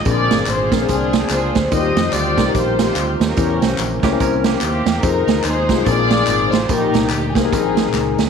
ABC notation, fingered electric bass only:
X:1
M:4/4
L:1/8
Q:"Swing" 1/4=145
K:Eb
V:1 name="Fingered electric bass" clef=bass
B,,, G,,, A,,, B,,, C,,2 _D,, =D,, | E,, F,, D,, C,, B,,,2 D,, E,, | =E,, C,, B,,, _D,, C,,2 _E,, =E,, | F,, D,, E,, C,, B,,,2 A,,, =A,,, |
B,,, C,, D,, C,, B,,,2 _D,, =D,, |]